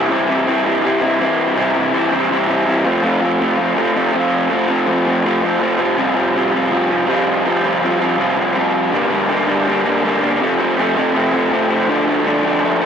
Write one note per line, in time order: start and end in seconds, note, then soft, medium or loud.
0.00 0.11 G3 medium
0.00 0.11 C4 medium
0.00 0.12 E4 medium
0.09 0.82 C3 medium
0.09 0.46 E3 medium
0.09 0.30 G3 loud
0.09 0.29 C4 loud
0.09 0.27 E4 loud
0.28 0.47 G3 medium
0.28 0.48 C4 medium
0.28 0.49 E4 medium
0.46 0.83 E3 medium
0.46 0.66 G3 medium
0.46 0.66 C4 medium
0.46 0.63 E4 medium
0.65 0.84 G3 medium
0.65 0.85 C4 medium
0.65 0.85 E4 medium
0.83 1.20 C3 medium
0.83 1.18 E3 medium
0.83 1.03 G3 loud
0.83 1.02 C4 medium
0.83 1.00 E4 medium
1.01 1.20 G3 medium
1.01 1.21 C4 medium
1.01 1.22 E4 medium
1.20 1.55 E3 medium
1.20 1.56 G3 medium
1.20 1.58 C4 medium
1.20 1.58 E4 medium
1.56 1.93 C3 medium
1.56 1.92 E3 loud
1.56 1.77 G3 medium
1.56 1.76 C4 loud
1.56 1.73 E4 loud
1.74 1.93 G3 medium
1.74 1.95 C4 medium
1.74 1.95 E4 medium
1.93 2.29 E3 medium
1.93 2.14 G3 medium
1.93 2.13 C4 medium
1.93 2.10 E4 loud
2.12 2.30 G3 medium
2.12 2.31 C4 medium
2.12 2.31 E4 medium
2.29 2.67 C3 medium
2.29 2.65 E3 medium
2.29 2.49 G3 medium
2.29 2.49 C4 loud
2.29 2.46 E4 loud
2.47 2.66 G3 medium
2.47 2.68 C4 medium
2.47 2.68 E4 medium
2.66 2.84 E3 medium
2.66 2.84 G3 medium
2.66 2.85 C4 medium
2.66 2.84 E4 medium
2.84 3.02 F3 medium
2.84 3.03 A3 medium
2.84 3.04 C4 medium
2.84 3.05 F4 medium
3.02 3.38 F3 medium
3.02 3.23 A3 loud
3.02 3.22 C4 loud
3.02 3.20 F4 loud
3.20 3.39 A3 medium
3.20 3.41 C4 medium
3.20 3.41 F4 medium
3.39 3.75 F3 medium
3.39 3.59 A3 medium
3.39 3.58 C4 loud
3.39 3.57 F4 medium
3.57 3.76 A3 medium
3.57 3.78 C4 medium
3.57 3.79 F4 medium
3.76 4.12 F3 medium
3.76 3.96 A3 loud
3.76 3.95 C4 medium
3.76 3.93 F4 medium
3.94 4.13 A3 medium
3.94 4.15 C4 medium
3.94 4.16 F4 medium
4.13 4.50 F3 medium
4.13 4.50 A3 medium
4.13 4.52 C4 medium
4.13 4.53 F4 loud
4.50 4.87 F3 medium
4.50 4.70 A3 medium
4.50 4.69 C4 loud
4.50 4.68 F4 medium
4.68 4.87 A3 medium
4.68 4.89 C4 medium
4.68 4.90 F4 medium
4.87 5.23 F3 medium
4.87 5.08 A3 medium
4.87 5.08 C4 medium
4.87 5.06 F4 medium
5.06 5.24 A3 medium
5.06 5.26 C4 medium
5.06 5.27 F4 medium
5.24 5.59 F3 medium
5.24 5.44 A3 medium
5.24 5.43 C4 loud
5.24 5.41 F4 medium
5.42 5.60 A3 medium
5.42 5.62 C4 medium
5.42 5.63 F4 medium
5.60 5.80 F3 medium
5.60 5.78 A3 medium
5.60 5.79 C4 medium
5.60 5.78 F4 medium
5.78 5.97 C3 medium
5.78 5.98 F3 medium
5.78 5.98 G3 medium
5.78 5.99 C4 medium
5.78 6.00 F4 medium
5.97 6.70 C3 medium
5.97 6.33 F3 medium
5.97 6.18 G3 medium
5.97 6.16 C4 loud
5.97 6.15 F4 loud
6.15 6.34 G3 medium
6.15 6.35 C4 medium
6.15 6.36 F4 medium
6.34 6.71 F3 medium
6.34 6.55 G3 medium
6.34 6.54 C4 medium
6.34 6.52 F4 medium
6.52 6.72 G3 medium
6.52 6.71 C4 medium
6.52 6.72 F4 medium
6.70 7.08 C3 medium
6.70 7.06 F3 medium
6.70 6.91 G3 medium
6.70 6.89 C4 medium
6.70 6.87 F4 loud
6.88 7.08 G3 medium
6.88 7.08 C4 medium
6.88 7.09 F4 medium
7.07 7.44 F3 medium
7.07 7.45 G3 medium
7.07 7.46 C4 medium
7.07 7.46 F4 medium
7.44 7.82 C3 medium
7.44 7.80 F3 medium
7.44 7.65 G3 loud
7.44 7.64 C4 medium
7.44 7.62 F4 loud
7.63 7.82 G3 medium
7.63 7.83 C4 medium
7.63 7.84 F4 medium
7.82 8.18 F3 medium
7.82 8.02 G3 medium
7.82 8.00 C4 medium
7.82 7.98 F4 medium
8.00 8.19 G3 medium
8.00 8.20 C4 medium
8.00 8.20 F4 medium
8.18 8.55 C3 medium
8.18 8.53 F3 medium
8.18 8.38 G3 loud
8.18 8.36 C4 loud
8.18 8.35 F4 loud
8.36 8.54 G3 medium
8.36 8.56 C4 medium
8.36 8.57 F4 medium
8.55 8.91 F3 medium
8.55 8.92 G3 medium
8.55 8.92 C4 medium
8.55 8.93 F4 medium
8.92 9.29 G2 medium
8.92 9.28 D3 loud
8.92 9.12 G3 medium
8.92 9.11 A#3 medium
8.92 9.09 D4 medium
9.10 9.28 G3 medium
9.10 9.30 A#3 medium
9.10 9.31 D4 medium
9.29 9.48 D3 medium
9.29 9.48 G3 medium
9.29 9.47 A#3 medium
9.29 9.47 D4 medium
9.47 9.86 G2 medium
9.47 9.65 D3 medium
9.47 9.66 G3 medium
9.47 9.67 A#3 medium
9.47 9.69 D4 medium
9.66 9.86 D3 medium
9.66 9.85 G3 medium
9.66 9.84 A#3 medium
9.66 9.84 D4 medium
9.85 10.24 G2 medium
9.85 10.02 D3 medium
9.85 10.03 G3 medium
9.85 10.04 A#3 medium
9.85 10.06 D4 medium
10.03 10.39 D3 medium
10.03 10.24 G3 medium
10.03 10.22 A#3 medium
10.03 10.22 D4 medium
10.22 10.41 G3 medium
10.22 10.40 A#3 medium
10.22 10.43 D4 medium
10.40 10.77 F2 medium
10.40 10.76 C3 medium
10.40 10.61 F3 medium
10.40 10.60 A3 loud
10.40 10.58 C4 loud
10.59 10.78 F3 medium
10.59 10.79 A3 medium
10.59 10.80 C4 medium
10.77 10.97 C3 medium
10.77 10.97 F3 medium
10.77 10.96 A3 loud
10.77 10.95 C4 medium
10.96 11.35 F2 medium
10.96 11.13 C3 medium
10.96 11.14 F3 medium
10.96 11.15 A3 medium
10.96 11.17 C4 medium
11.14 11.34 C3 medium
11.14 11.33 F3 medium
11.14 11.32 A3 medium
11.14 11.32 C4 medium
11.32 11.72 F2 medium
11.32 11.49 C3 medium
11.32 11.50 F3 medium
11.32 11.51 A3 medium
11.32 11.54 C4 medium
11.51 11.87 C3 medium
11.51 11.71 F3 medium
11.51 11.70 A3 medium
11.51 11.69 C4 medium
11.69 11.88 F3 medium
11.69 11.88 A3 medium
11.69 11.91 C4 medium
11.88 12.23 D3 medium
11.88 12.08 F3 medium
11.88 12.06 A3 medium
11.88 12.05 D4 loud
12.06 12.25 F3 medium
12.06 12.26 A3 medium
12.06 12.27 D4 medium
12.24 12.45 D3 medium
12.24 12.44 F3 medium
12.24 12.43 A3 medium
12.24 12.42 D4 loud
12.43 12.60 D3 medium
12.43 12.62 F3 medium
12.43 12.63 A3 medium
12.43 12.64 D4 medium
12.62 12.82 D3 medium
12.62 12.81 F3 medium
12.62 12.80 A3 medium
12.62 12.79 D4 medium
12.80 12.86 F3 medium
12.80 12.86 A3 medium
12.80 12.86 D4 loud